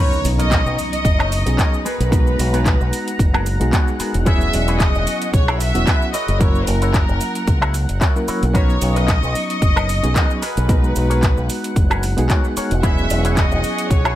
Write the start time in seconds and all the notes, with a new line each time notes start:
Already playing: F#3 B3 C#4 D#4 A#4, impact
0.00 D#4 B4 C#5 D#5 A#5 C#6
0.13 shaker
0.24 B1, open hi-hat, shaker
0.38 C#4 D#4 A#4 C#5 D#5, closed hi-hat, shaker
0.51 kick, clap, closed hi-hat, shaker
0.66 B1, shaker
0.78 muted clean electric guitar stroke, open hi-hat, shaker
0.93 D#5, closed hi-hat, shaker
1.05 F#1, kick, closed hi-hat, shaker
1.19 C#4 D#4 A#4 C#5, high woodblock, shaker
1.32 open hi-hat, shaker
1.46 B1 F#3 B3 C#4 D#4 G#4, muted clean electric guitar stroke, closed hi-hat, shaker
1.58 C#4 D#4 A#4 C#5, kick, clap, closed hi-hat, shaker
1.74 shaker
1.85 B3 F#4 G#4 A#4 B4 F#5 A#5, open hi-hat, shaker
2.00 B1, closed hi-hat, shaker
2.11 G#3 B3 D#4 F#4 B4, kick, closed hi-hat, shaker
2.27 shaker
2.39 B1, open hi-hat, shaker
2.53 B3 F#4 G#4 A#4, closed hi-hat, shaker
2.66 kick, clap, closed hi-hat, shaker
2.80 B1, shaker
2.92 muted clean electric guitar stroke, open hi-hat, shaker
3.08 closed hi-hat, shaker
3.19 F#1, kick, closed hi-hat, shaker
3.34 B3 F#4 G#4 A#4, high woodblock, shaker
3.46 open hi-hat, shaker
3.60 B1 G#3 B3 D#4 F#4 G#4, muted clean electric guitar stroke, closed hi-hat, shaker
3.72 B3 F#4 G#4 C#5, kick, clap, closed hi-hat, shaker
3.88 shaker
3.99 B3 F#4 G#4 A#4, muted fingered electric bass stroke, open hi-hat, shaker
4.14 E1, closed hi-hat, shaker
4.25 F#3 B3 C#4 E4 F#4 G#4 C#5 E5 C#6, kick, closed hi-hat, shaker
4.41 shaker
4.53 E1, open hi-hat, shaker
4.68 E4 F#4 G#4 B4, closed hi-hat, shaker
4.80 D#5, kick, clap, closed hi-hat, shaker
4.95 E1, shaker
5.07 muted clean electric guitar stroke, open hi-hat, shaker
5.22 closed hi-hat, shaker
5.33 B1 C#5, kick, closed hi-hat, shaker
5.48 E4 F#4 G#4 A#4, high woodblock, shaker
5.60 E5, open hi-hat, shaker
5.74 E1 F#3 B3 C#4 E4 F#4, muted clean electric guitar stroke, closed hi-hat, shaker
5.87 E4 F#4 G#4 B4, kick, clap, closed hi-hat, shaker
6.02 shaker
6.14 E4 F#4 A#4 C#5 D#5, open hi-hat, shaker
6.28 F#1, closed hi-hat, shaker
6.39 F#3 A#3 C#4 E4 A#4 C#5, kick, closed hi-hat, shaker
6.55 shaker
6.67 F#1 A#4, open hi-hat, shaker
6.82 E4 F#4 A#4 C#5, closed hi-hat, shaker
6.94 kick, clap, closed hi-hat, shaker
7.09 F#1, shaker
7.20 muted clean electric guitar stroke, open hi-hat, shaker
7.35 closed hi-hat, shaker
7.47 C#2, kick, closed hi-hat, shaker
7.62 E4 F#4 A#4 C#5, high woodblock, shaker
7.74 open hi-hat, shaker
7.89 F#1, muted clean electric guitar stroke, closed hi-hat, shaker
8.01 E4 F#4 A#4 C#5, kick, clap, closed hi-hat, shaker
8.15 F#3 A#3 C#4 E4 A#4, shaker
8.28 E4 F#4 A#4 C#5, muted fingered electric bass stroke, open hi-hat, shaker
8.43 B1, closed hi-hat, shaker
8.54 F#3 B3 C#4 D#4 A#4 B4 C#5 D#5 A#5 C#6, kick, closed hi-hat, shaker
8.70 shaker
8.82 B1, open hi-hat, shaker
8.96 D#4 A#4 B4 D#5, closed hi-hat, shaker
9.08 kick, clap, closed hi-hat, shaker
9.23 B1, shaker
9.35 muted clean electric guitar stroke, open hi-hat, shaker
9.50 D#5, closed hi-hat, shaker
9.62 F#1, kick, closed hi-hat, shaker
9.76 D#4 A#4 B4 C#5, high woodblock, shaker
9.89 open hi-hat, shaker
10.03 B1 F#3 B3 C#4 D#4 G#4, muted clean electric guitar stroke, closed hi-hat, shaker
10.15 D#4 A#4 B4 D#5, kick, clap, closed hi-hat, shaker
10.31 shaker
10.42 F#4 G#4 A#4 B4 F#5, open hi-hat, shaker
10.57 B1, closed hi-hat, shaker
10.69 G#3 B3 D#4 F#4 A#5, kick, closed hi-hat, shaker
10.84 shaker
10.96 B1, open hi-hat, shaker
11.09 F#4 G#4 A#4 C#5, closed hi-hat, shaker
11.23 kick, clap, closed hi-hat, shaker
11.37 B1, shaker
11.49 muted clean electric guitar stroke, open hi-hat, shaker
11.64 closed hi-hat, shaker
11.76 F#1, kick, closed hi-hat, shaker
11.90 F#4 G#4 A#4 B4, high woodblock, shaker
12.03 open hi-hat, shaker
12.17 B1 G#3 B3 D#4 F#4 G#4, muted clean electric guitar stroke, closed hi-hat, shaker
12.29 F#4 G#4 A#4 C#5, kick, clap, closed hi-hat, shaker
12.44 shaker
12.56 F#4 G#4 A#4 C#5, muted fingered electric bass stroke, open hi-hat, shaker
12.71 E1, closed hi-hat, shaker
12.83 F#3 B3 C#4 E4 F#4 G#4 C#5 E5 C#6, kick, closed hi-hat, shaker
12.98 shaker
13.10 E1, open hi-hat, shaker
13.24 E4 F#4 G#4 C#5, closed hi-hat, shaker
13.37 D#5, kick, clap, closed hi-hat, shaker
13.51 E1, shaker
13.63 muted clean electric guitar stroke, open hi-hat, shaker
13.79 closed hi-hat, shaker
13.90 B1 C#5, kick, closed hi-hat, shaker
14.05 E4 F#4 G#4 C#5, high woodblock, shaker